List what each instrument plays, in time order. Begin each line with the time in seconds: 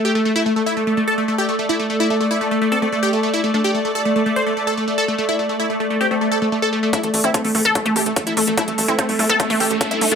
Already playing: ambient pad A3 A4 E5 E6
0.05 supersaw synth G4
0.15 supersaw synth A3
0.25 supersaw synth A3
0.36 supersaw synth E4, ambient pad D5
0.41 ambient pad D5
0.46 supersaw synth A3
0.56 supersaw synth A3
0.66 supersaw synth E4
0.77 supersaw synth A3
0.87 supersaw synth A3
0.97 supersaw synth A3
1.08 supersaw synth A4
1.18 supersaw synth A3
1.28 supersaw synth A3
1.38 supersaw synth G4
1.49 supersaw synth A3
1.59 supersaw synth A3
1.69 supersaw synth E4
1.80 supersaw synth A3
1.90 supersaw synth A3
2.00 supersaw synth E4
2.10 supersaw synth A3
2.21 supersaw synth A3
2.31 supersaw synth E4
2.41 supersaw synth A3
2.51 supersaw synth A3
2.62 supersaw synth A3
2.72 synth arpeggio sound C4, supersaw synth A4
2.82 supersaw synth A3, synth arpeggio sound C4
2.92 supersaw synth A3
3.03 supersaw synth G4
3.13 supersaw synth A3
3.23 supersaw synth A3
3.34 supersaw synth E4
3.44 supersaw synth A3
3.54 supersaw synth A3, synth arpeggio sound D4
3.64 supersaw synth G4
3.75 supersaw synth A3
3.85 supersaw synth A3
3.95 supersaw synth A4
4.05 supersaw synth A3
4.16 supersaw synth A3
4.26 supersaw synth A3
4.36 supersaw synth C5
4.47 supersaw synth A3
4.57 supersaw synth A3
4.67 supersaw synth A4
4.77 supersaw synth A3
4.88 supersaw synth A3
4.98 supersaw synth A4
5.08 supersaw synth A3
5.18 supersaw synth A3
5.29 supersaw synth E4
5.39 supersaw synth A3
5.49 supersaw synth A3
5.60 supersaw synth E4
5.70 supersaw synth A3
5.80 supersaw synth A3
5.90 supersaw synth A3
6.01 synth arpeggio sound C4, supersaw synth G4
6.11 supersaw synth A3, synth arpeggio sound C4
6.21 supersaw synth A3
6.32 supersaw synth A4
6.42 supersaw synth A3
6.52 supersaw synth A3
6.62 supersaw synth A4
6.73 supersaw synth A3
6.83 supersaw synth A3
6.93 ambient pad A3 A4, synth arpeggio sound A3, supersaw synth E4, kick, closed hi-hat, riser
7.03 analog synth bass A1, supersaw synth A3, closed hi-hat
7.14 analog synth bass A1, supersaw synth A3, open hi-hat
7.24 analog synth bass A1, synth arpeggio sound C4, supersaw synth E4, closed hi-hat
7.34 supersaw synth A3, synth arpeggio sound C4, kick, closed hi-hat
7.42 analog synth bass A1, supersaw synth A3, ambient pad E6, open hi-hat
7.55 analog synth bass A1, supersaw synth A3, synth arpeggio sound A3, open hi-hat
7.61 ambient pad E5
7.65 analog synth bass A1, supersaw synth A4, synth arpeggio sound A4, closed hi-hat
7.75 supersaw synth A3, synth arpeggio sound A3, kick, closed hi-hat
7.86 analog synth bass A1, supersaw synth A3, synth arpeggio sound A3, closed hi-hat
7.96 analog synth bass A1, synth arpeggio sound A3, supersaw synth G4, open hi-hat
8.06 analog synth bass A1, supersaw synth A3, closed hi-hat
8.16 supersaw synth A3, kick, closed hi-hat
8.27 analog synth bass A1, supersaw synth E4, closed hi-hat
8.37 analog synth bass A1, synth arpeggio sound A3, supersaw synth A3, open hi-hat
8.47 analog synth bass A1, supersaw synth A3, closed hi-hat
8.57 synth arpeggio sound A3, supersaw synth E4, kick, closed hi-hat
8.68 analog synth bass A1, supersaw synth A3, closed hi-hat
8.78 analog synth bass A1, supersaw synth A3, open hi-hat
8.88 analog synth bass A1, synth arpeggio sound C4, supersaw synth E4, closed hi-hat
8.99 supersaw synth A3, synth arpeggio sound C4, kick, closed hi-hat
9.09 analog synth bass C2, supersaw synth A3, open hi-hat
9.19 analog synth bass C2, synth arpeggio sound A3, supersaw synth A3, open hi-hat
9.29 analog synth bass C2, synth arpeggio sound C4 A4, supersaw synth A4, closed hi-hat
9.40 synth arpeggio sound A3 C4, supersaw synth A3, kick, closed hi-hat
9.50 analog synth bass A1, supersaw synth A3, synth arpeggio sound A3, open hi-hat
9.60 analog synth bass A1, synth arpeggio sound A3, supersaw synth G4, open hi-hat
9.71 analog synth bass A1, supersaw synth A3, closed hi-hat
9.81 supersaw synth A3, kick, closed hi-hat
9.91 analog synth bass C2, supersaw synth E4, closed hi-hat
10.01 analog synth bass C2, supersaw synth A3, synth arpeggio sound A3, open hi-hat
10.12 analog synth bass C2, supersaw synth A3, synth arpeggio sound D4